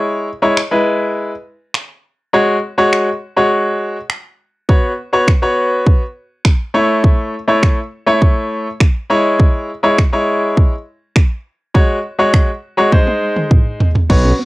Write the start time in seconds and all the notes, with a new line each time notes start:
Already playing: G#3 E4 C#5
0.42 G#3 E4 C#5
0.57 finger snap
0.71 G#3 E4 B4
1.74 finger snap
2.33 G#3 F#4 C#5
2.78 G#3 F#4 C#5
2.93 finger snap
3.36 G#3 F#4 C#5
4.10 finger snap
4.69 B3 F#4 C#5, kick
5.13 B3 F#4 C#5
5.28 finger snap, kick
5.42 B3 F#4 C#5
5.86 kick
6.45 finger snap, kick
6.74 A3 E4 C#5
7.04 kick
7.48 A3 E4 C#5
7.63 finger snap, kick
8.07 A3 E4 C#5
8.22 kick
8.80 finger snap, kick
9.10 G#3 E4 C#5
9.40 kick
9.83 G#3 E4 C#5
9.98 finger snap, kick
10.13 G#3 E4 C#5
10.57 kick
11.16 finger snap, kick
11.74 G#3 F#4 C#5, kick
12.18 G#3 F#4 C#5
12.34 finger snap, kick
12.77 G#3 F#4 C#5
12.92 G#3 D#4 C5, kick, high tom
13.07 high tom
13.36 mid tom
13.51 kick, mid tom
13.80 floor tom
13.95 floor tom
14.10 B1 F#3 B3 F#4 C#5, kick, crash
14.25 C#4
14.39 B3